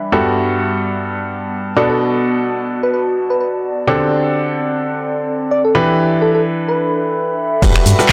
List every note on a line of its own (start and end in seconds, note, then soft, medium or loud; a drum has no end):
0.00 1.76 G3 medium
0.00 0.78 D4 medium
0.00 0.78 E5 medium
0.00 0.79 B5 medium
0.12 1.74 G2 medium
0.12 1.74 B3 medium
0.12 3.87 B3 medium
0.12 1.74 F#4 medium
0.12 1.74 G4 medium
0.12 1.74 A4 medium
0.45 6.50 A5 medium
0.71 2.48 F#5 medium
1.76 3.85 B2 medium
1.76 3.85 B3 medium
1.76 3.85 D4 medium
1.76 3.85 F#4 medium
1.76 3.85 A4 medium
1.76 1.87 D5 medium
1.90 2.02 A4 medium
2.09 3.87 F#4 medium
2.63 6.50 D5 medium
2.83 2.90 B4 medium
2.94 3.02 B4 medium
3.30 3.37 B4 medium
3.40 3.49 B4 medium
3.87 5.72 D3 medium
3.87 5.75 C4 medium
3.87 5.72 C4 medium
3.87 5.72 D4 medium
3.87 5.72 G4 medium
3.87 5.72 A4 medium
4.11 8.12 A4 medium
5.51 5.62 D5 medium
5.65 5.77 A4 medium
5.75 7.60 E3 medium
5.75 7.60 D4 medium
5.75 8.12 D4 medium
5.75 7.60 E4 medium
5.75 7.60 G4 medium
5.75 7.60 B4 medium
6.16 8.12 B5 medium
6.22 6.30 A4 medium
6.35 6.41 A4 medium
6.39 8.12 E5 medium
6.68 7.35 B4 medium
7.62 7.78 G1 loud
7.62 7.96 G3 medium
7.62 8.12 B3 medium
7.62 7.96 F#4 medium
7.62 7.96 G4 medium
7.62 7.96 A4 medium
7.62 7.96 B4 medium
7.62 kick loud
7.62 closed hi-hat medium
7.62 crash loud
7.62 cabasa soft
7.76 finger snap medium
7.76 closed hi-hat soft
7.86 7.94 G2 medium
7.86 snare medium
7.86 closed hi-hat medium
7.86 open hi-hat loud
7.86 cabasa medium
7.98 8.12 G3 medium
7.98 8.12 F#4 medium
7.98 8.12 G4 medium
7.98 8.12 A4 medium
7.98 8.12 B4 medium
7.98 snare medium
7.98 cabasa soft
8.09 clap loud